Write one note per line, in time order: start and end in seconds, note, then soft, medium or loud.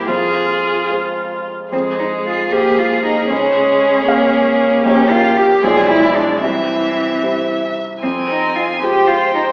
0.00 0.10 C2 soft
0.00 0.10 A#3 soft
0.00 0.10 E4 soft
0.00 0.10 G4 soft
0.00 0.11 C5 soft
0.08 0.88 F2 soft
0.08 1.52 F4 soft
0.08 1.32 F4 soft
0.08 0.89 G#4 soft
0.90 1.69 G#3 soft
0.90 1.69 G#4 soft
0.90 1.69 C5 soft
1.72 2.50 F2 soft
1.72 2.48 G#3 soft
1.72 1.81 C4 medium
1.72 4.81 G#4 soft
1.99 2.07 D#4 soft
2.26 2.54 F4 soft
2.52 3.27 G#3 soft
2.52 3.32 A#3 soft
2.52 2.80 G4 medium
2.52 3.27 G#4 soft
2.52 3.27 C5 soft
2.79 3.04 F4 medium
3.04 3.30 D#4 medium
3.30 4.06 C#2 soft
3.30 4.07 G#3 soft
3.30 4.82 C#4 medium
4.07 4.81 G#3 soft
4.07 5.60 A#3 medium
4.07 4.81 G#4 soft
4.07 4.81 F5 soft
4.84 5.61 A#1 soft
4.84 5.60 A#3 soft
4.84 5.12 C#4 medium
4.84 5.66 G4 soft
4.84 5.60 G4 soft
4.84 5.60 C#5 soft
5.11 5.39 F4 medium
5.37 5.65 G4 medium
5.63 6.41 B1 medium
5.63 6.39 F3 soft
5.63 6.44 G#3 medium
5.63 6.39 F4 soft
5.63 5.89 G#4 medium
5.63 6.42 D5 soft
5.63 6.40 D5 soft
5.89 6.18 E4 medium
6.16 6.42 D4 medium
6.42 7.21 C2 soft
6.42 7.63 E3 soft
6.42 7.21 C4 medium
6.42 7.80 E5 soft
7.23 7.99 G3 soft
7.23 8.00 E4 soft
7.23 8.00 C5 soft
8.02 8.80 F2 soft
8.02 8.10 C4 medium
8.02 8.79 C4 soft
8.02 8.84 G#5 soft
8.29 8.57 D#4 medium
8.56 8.82 F4 soft
8.82 9.52 G#3 soft
8.82 9.52 F4 soft
8.82 9.09 G4 medium
8.82 9.52 C5 soft
8.82 9.52 G5 soft
9.07 9.34 F4 medium
9.34 9.42 D#4 medium